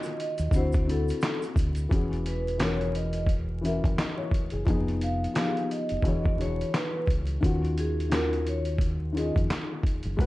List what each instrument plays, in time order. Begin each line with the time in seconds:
Already playing: felt piano D#3 C#4 F4 F#4, vibraphone D#5
0.03 closed hi-hat, shaker
0.20 vibraphone D#5, closed hi-hat
0.38 fingered electric bass D#2, closed hi-hat, shaker
0.51 fingered electric bass D2, felt piano D3 C4 E4, kick, closed hi-hat, shaker
0.56 felt piano F#4, vibraphone C5
0.72 kick, closed hi-hat, shaker
0.86 felt piano D3 C4 E4, closed hi-hat
0.90 felt piano F#4, vibraphone A4
1.08 closed hi-hat, shaker
1.21 snare, clap, closed hi-hat, shaker
1.42 closed hi-hat, shaker
1.56 fingered electric bass D2, kick, closed hi-hat, shaker
1.75 closed hi-hat, shaker
1.89 fingered electric bass E1, felt piano E3 C#4 F#4, kick, closed hi-hat
1.94 felt piano G#4
2.13 closed hi-hat
2.26 vibraphone B4, closed hi-hat
2.48 closed hi-hat
2.58 felt piano E3 C#4 F#4, vibraphone C#5, snare, clap, closed hi-hat
2.63 felt piano A#4
2.81 closed hi-hat
2.95 vibraphone D#5, closed hi-hat
3.13 closed hi-hat
3.27 kick, closed hi-hat
3.61 felt piano E3 C#4 F#4, closed hi-hat
3.65 felt piano A#4, vibraphone E5
3.84 fingered electric bass F#1, kick, closed hi-hat
3.98 felt piano D#5, snare, clap, closed hi-hat
4.18 felt piano C#5
4.31 kick, closed hi-hat
4.50 fingered electric bass F#1, felt piano G#4, closed hi-hat
4.65 fingered electric bass F1, felt piano F3 B3 D#4, kick, closed hi-hat
4.69 felt piano G#4
4.88 closed hi-hat
5.01 vibraphone F5, closed hi-hat
5.24 closed hi-hat
5.34 felt piano F3 B3 D#4, snare, clap, closed hi-hat
5.38 felt piano G4, vibraphone F5
5.45 felt piano G#4
5.57 closed hi-hat
5.71 vibraphone D#5, closed hi-hat
5.89 fingered electric bass F1, closed hi-hat
6.02 fingered electric bass E1, felt piano D3 E3 F#4 G#4, kick, closed hi-hat
6.08 felt piano C#5
6.26 kick
6.37 felt piano E3 D4 F#4 G#4, vibraphone C#5, closed hi-hat
6.42 felt piano C#5
6.61 closed hi-hat
6.74 vibraphone B4, snare, clap, closed hi-hat
7.07 fingered electric bass C#2, kick, closed hi-hat
7.27 closed hi-hat
7.41 fingered electric bass D#2, felt piano D#3 C#4 F4, kick, closed hi-hat
7.45 felt piano F#4
7.65 closed hi-hat
7.78 vibraphone G#4, closed hi-hat
8.00 closed hi-hat
8.10 felt piano D#3 C#4 F4, snare, clap, closed hi-hat
8.14 felt piano F#4, vibraphone A#4
8.33 closed hi-hat
8.47 vibraphone C#5, closed hi-hat
8.65 closed hi-hat
8.78 kick, closed hi-hat
9.12 felt piano D#3 C#4 F4
9.17 felt piano G#4, vibraphone D#5, closed hi-hat
9.36 fingered electric bass F2, kick, closed hi-hat
9.50 snare, clap, closed hi-hat
9.83 kick, closed hi-hat
10.03 fingered electric bass F#1, closed hi-hat
10.17 fingered electric bass G#1, felt piano G#3 F#4 A#4, kick, closed hi-hat
10.21 felt piano B4